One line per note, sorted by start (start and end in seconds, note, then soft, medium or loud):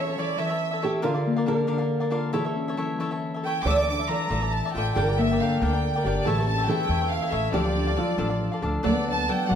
0.00 0.17 E3 medium
0.00 1.10 C#4 medium
0.00 0.87 A4 medium
0.00 0.20 C#5 medium
0.07 0.18 A4 soft
0.07 0.18 C#5 soft
0.07 0.19 E5 medium
0.18 0.37 E3 medium
0.18 0.37 E4 medium
0.18 0.37 A4 medium
0.18 0.38 C#5 medium
0.18 0.40 D5 medium
0.18 0.38 E5 medium
0.38 1.10 E3 medium
0.38 0.51 E4 medium
0.38 0.49 A4 medium
0.38 0.49 C#5 medium
0.38 0.88 E5 medium
0.38 0.48 E5 medium
0.49 0.72 A4 soft
0.49 0.72 C#5 medium
0.49 0.70 E5 medium
0.71 0.81 A4 soft
0.71 0.82 C#5 soft
0.71 0.82 E5 soft
0.82 1.02 E4 medium
0.82 1.04 G4 loud
0.82 1.02 A4 medium
0.82 1.32 A4 medium
0.82 1.03 C#5 medium
0.82 1.03 E5 medium
1.02 1.46 D3 medium
1.02 1.15 D4 medium
1.02 1.49 F4 loud
1.02 1.14 A#4 medium
1.02 1.13 D5 medium
1.02 1.13 F5 medium
1.14 1.37 A#4 medium
1.14 1.36 D5 soft
1.14 1.35 F5 medium
1.26 3.49 A#3 medium
1.36 1.45 A#4 medium
1.36 1.47 D5 medium
1.36 1.47 F5 medium
1.46 1.67 D3 medium
1.46 1.66 D4 medium
1.46 1.67 A#4 medium
1.46 2.34 A#4 loud
1.46 1.67 D5 medium
1.46 1.67 F5 medium
1.67 2.38 D3 medium
1.67 1.80 D4 medium
1.67 1.79 A#4 medium
1.67 1.78 D5 medium
1.67 1.77 F5 medium
1.78 2.00 A#4 soft
1.78 2.00 D5 medium
1.78 1.99 F5 medium
2.00 2.10 A#4 soft
2.00 2.11 D5 soft
2.00 2.11 F5 soft
2.10 2.32 D4 medium
2.10 2.38 F4 medium
2.10 2.32 A#4 medium
2.10 2.33 D5 medium
2.10 2.33 F5 medium
2.32 2.76 E3 medium
2.32 2.45 E4 medium
2.32 2.45 A4 medium
2.32 3.40 A4 medium
2.32 2.45 C#5 medium
2.32 2.43 E5 medium
2.45 2.68 A4 soft
2.45 2.68 C#5 soft
2.45 2.67 E5 medium
2.56 3.94 C#4 medium
2.68 2.76 A4 medium
2.68 2.77 C#5 medium
2.68 2.78 E5 medium
2.77 2.97 E3 medium
2.77 2.99 E4 medium
2.77 2.99 A4 medium
2.77 2.99 C#5 medium
2.77 3.00 E5 medium
2.98 3.63 E3 medium
2.98 3.11 E4 medium
2.98 3.11 A4 medium
2.98 3.11 C#5 medium
2.98 3.10 E5 medium
3.11 3.34 A4 soft
3.11 3.34 C#5 soft
3.11 3.33 E5 medium
3.34 3.45 A4 soft
3.34 3.45 C#5 soft
3.34 3.45 E5 soft
3.43 3.66 E4 soft
3.43 5.24 A4 medium
3.43 3.65 A4 medium
3.43 3.66 C#5 medium
3.43 3.66 E5 medium
3.43 3.64 G5 loud
3.64 4.08 D2 loud
3.64 4.07 E3 medium
3.64 3.78 F4 medium
3.64 3.78 A4 medium
3.64 4.96 D5 medium
3.64 3.77 D5 medium
3.64 3.76 E5 medium
3.64 3.71 D6 loud
3.71 3.77 E6 medium
3.76 4.00 A4 soft
3.76 4.00 D5 soft
3.76 3.98 E5 soft
3.76 3.87 D6 loud
3.88 6.53 D4 medium
3.88 4.08 D6 medium
3.99 4.09 A4 soft
3.99 4.09 D5 soft
3.99 4.10 E5 medium
4.08 4.29 E3 medium
4.08 4.28 F4 medium
4.08 4.29 A4 medium
4.08 4.30 D5 medium
4.08 4.30 E5 medium
4.08 4.54 A#5 medium
4.30 4.59 A1 medium
4.30 5.01 E3 medium
4.30 4.42 F4 medium
4.30 4.41 A4 medium
4.30 4.41 D5 medium
4.30 4.40 E5 medium
4.42 4.65 A4 soft
4.42 4.64 D5 soft
4.42 4.64 E5 soft
4.53 4.75 A5 medium
4.65 4.76 A4 soft
4.65 4.76 D5 soft
4.65 4.75 E5 soft
4.72 4.89 A1 medium
4.72 6.31 F4 medium
4.72 4.92 G5 loud
4.77 4.95 F4 medium
4.77 4.96 A4 medium
4.77 4.96 D5 medium
4.77 4.97 E5 medium
4.94 5.38 G1 loud
4.94 5.38 D3 medium
4.94 5.08 D4 medium
4.94 6.25 A#4 medium
4.94 5.08 A#4 medium
4.94 5.08 D5 medium
4.94 5.17 G5 medium
4.94 5.07 G5 medium
5.09 5.31 A#4 soft
5.09 5.31 D5 soft
5.09 5.30 G5 medium
5.18 7.37 A#3 medium
5.18 5.40 E5 loud
5.31 5.40 A#4 soft
5.31 5.41 D5 soft
5.31 5.41 G5 soft
5.39 5.59 D3 medium
5.39 5.60 D4 medium
5.39 5.61 A#4 medium
5.39 5.61 D5 medium
5.39 5.61 F5 medium
5.39 5.62 G5 medium
5.60 5.90 D2 loud
5.60 6.30 D3 medium
5.60 5.73 D4 medium
5.60 5.73 A#4 medium
5.60 5.73 D5 medium
5.60 6.02 G5 medium
5.60 5.72 G5 medium
5.73 5.95 A#4 soft
5.73 5.95 D5 soft
5.73 5.94 G5 medium
5.95 6.05 A#4 soft
5.95 6.05 D5 soft
5.95 6.05 G5 soft
6.04 6.18 G1 medium
6.04 6.26 D4 soft
6.04 8.39 G4 medium
6.04 6.26 A#4 medium
6.04 6.25 D5 medium
6.04 6.26 D5 medium
6.04 6.27 G5 medium
6.24 6.67 A1 loud
6.24 6.66 E3 medium
6.24 6.38 E4 medium
6.24 6.68 A4 medium
6.24 6.37 A4 medium
6.24 6.38 C#5 medium
6.24 6.37 E5 medium
6.24 6.47 A5 medium
6.38 6.59 A4 soft
6.38 6.58 C#5 soft
6.38 6.57 E5 medium
6.47 7.81 C#4 medium
6.47 6.67 A5 loud
6.58 6.69 A4 soft
6.58 6.69 C#5 medium
6.58 6.68 E5 medium
6.67 6.86 E3 medium
6.67 6.89 E4 medium
6.67 7.53 A4 loud
6.67 6.89 A4 medium
6.67 6.89 C#5 medium
6.67 6.89 E5 medium
6.67 7.12 G5 loud
6.87 7.17 E2 medium
6.87 7.58 E3 medium
6.87 7.01 E4 medium
6.87 7.01 A4 medium
6.87 7.01 C#5 medium
6.87 7.00 E5 medium
7.01 7.23 A4 soft
7.01 7.22 C#5 soft
7.01 7.21 E5 soft
7.11 7.32 F5 medium
7.22 7.31 A4 soft
7.22 7.31 C#5 soft
7.22 7.32 E5 medium
7.31 7.46 A1 loud
7.31 7.52 E4 medium
7.31 8.62 A4 medium
7.31 7.52 A4 medium
7.31 7.53 C#5 medium
7.31 7.53 E5 medium
7.52 7.95 D2 loud
7.52 7.95 F3 medium
7.52 7.65 D4 medium
7.52 7.99 G4 medium
7.52 7.65 A4 medium
7.52 8.59 D5 medium
7.52 7.64 D5 medium
7.52 7.64 F5 medium
7.65 7.88 A4 soft
7.65 7.86 D5 soft
7.65 7.86 F5 medium
7.75 9.07 D4 medium
7.87 7.96 A4 soft
7.87 7.96 D5 soft
7.87 7.97 F5 medium
7.96 8.16 F3 medium
7.96 8.17 D4 medium
7.96 8.60 F4 medium
7.96 8.18 A4 medium
7.96 8.18 D5 medium
7.96 8.18 F5 medium
8.17 8.47 A1 medium
8.17 8.89 F3 medium
8.17 8.30 D4 medium
8.17 8.29 A4 medium
8.17 8.29 D5 medium
8.17 8.28 F5 medium
8.29 8.52 A4 soft
8.29 8.52 D5 soft
8.29 8.50 F5 medium
8.52 8.62 A4 soft
8.52 8.62 D5 soft
8.52 8.63 F5 soft
8.62 8.76 D2 medium
8.62 8.82 D4 medium
8.62 9.55 A4 medium
8.62 8.82 A4 medium
8.62 8.83 D5 medium
8.62 8.83 F5 medium
8.83 9.27 D2 loud
8.83 9.27 F#3 medium
8.83 9.55 B3 medium
8.83 9.28 D4 medium
8.83 9.28 A4 medium
8.83 9.29 D5 medium
8.83 9.06 D5 medium
8.83 9.29 F#5 medium
9.08 9.55 D4 medium
9.08 9.30 A5 loud
9.28 9.47 F#3 medium
9.28 9.49 D4 medium
9.28 9.49 A4 medium
9.28 9.48 D5 medium
9.28 9.48 F#5 medium
9.28 9.50 G5 loud
9.48 9.55 A1 loud
9.48 9.55 F#3 medium
9.48 9.55 D4 soft
9.48 9.55 A4 soft
9.48 9.55 D5 medium
9.48 9.55 F#5 medium